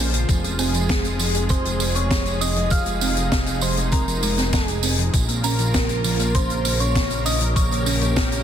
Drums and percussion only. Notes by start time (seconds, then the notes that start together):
0.14 closed hi-hat, tambourine
0.29 kick, closed hi-hat, tambourine
0.44 closed hi-hat, tambourine
0.59 open hi-hat, tambourine
0.74 closed hi-hat, tambourine
0.89 kick, snare, closed hi-hat, tambourine
1.04 closed hi-hat, tambourine
1.19 open hi-hat, tambourine
1.35 closed hi-hat, tambourine
1.49 kick, closed hi-hat, tambourine
1.65 closed hi-hat, tambourine
1.80 open hi-hat, tambourine
1.95 closed hi-hat, tambourine
2.11 kick, snare, closed hi-hat, tambourine
2.25 closed hi-hat, tambourine
2.41 open hi-hat, tambourine
2.56 closed hi-hat, tambourine
2.70 kick, closed hi-hat, tambourine
2.86 closed hi-hat, tambourine
3.01 open hi-hat, tambourine
3.17 closed hi-hat, tambourine
3.32 kick, snare, closed hi-hat, tambourine
3.46 closed hi-hat, tambourine
3.61 open hi-hat, tambourine
3.77 closed hi-hat, tambourine
3.92 kick, closed hi-hat, tambourine
4.08 closed hi-hat, tambourine
4.22 open hi-hat, tambourine
4.38 snare, closed hi-hat, tambourine
4.53 kick, snare, closed hi-hat, tambourine
4.68 closed hi-hat, tambourine
4.83 open hi-hat, tambourine
4.99 closed hi-hat, tambourine
5.14 kick, closed hi-hat, tambourine
5.29 closed hi-hat, tambourine
5.43 open hi-hat, tambourine
5.59 closed hi-hat, tambourine
5.74 kick, snare, closed hi-hat, tambourine
5.89 closed hi-hat, tambourine
6.04 open hi-hat, tambourine
6.19 closed hi-hat, tambourine
6.34 kick, closed hi-hat, tambourine
6.50 closed hi-hat, tambourine
6.65 open hi-hat, tambourine
6.80 closed hi-hat, tambourine
6.95 kick, snare, closed hi-hat, tambourine
7.10 closed hi-hat, tambourine
7.26 open hi-hat, tambourine
7.41 closed hi-hat, tambourine
7.56 kick, closed hi-hat, tambourine
7.71 closed hi-hat, tambourine
7.86 open hi-hat, tambourine
8.01 closed hi-hat, tambourine
8.16 kick, snare, closed hi-hat, tambourine
8.32 closed hi-hat, tambourine